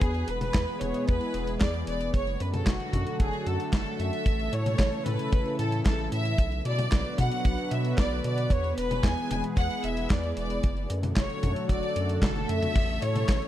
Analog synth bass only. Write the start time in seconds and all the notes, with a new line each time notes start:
0.02 E2
0.28 E1
0.55 E2
0.81 E1
1.09 E2
1.34 E1
1.61 E2
1.87 E1
2.14 F#1
2.40 F#2
2.67 F#1
2.93 F#2
3.20 F#1
3.46 F#2
3.73 F#1
4.00 F#2
4.26 A1
4.53 A2
4.79 A1
5.06 A2
5.33 A1
5.59 A2
5.86 A1
6.12 A2
6.38 B1
6.65 B2
6.92 B1
7.19 B2
7.45 B1
7.72 B2
7.98 B1
8.25 B2
8.50 E2
8.78 E1
9.04 E2
9.31 E1
9.57 E2
9.84 E1
10.10 E2
10.37 E1
10.64 F#1
10.90 F#2
11.17 F#1
11.44 F#2
11.69 F#1
11.96 F#2
12.22 F#1
12.49 F#2
12.76 A1
13.02 A2
13.29 A1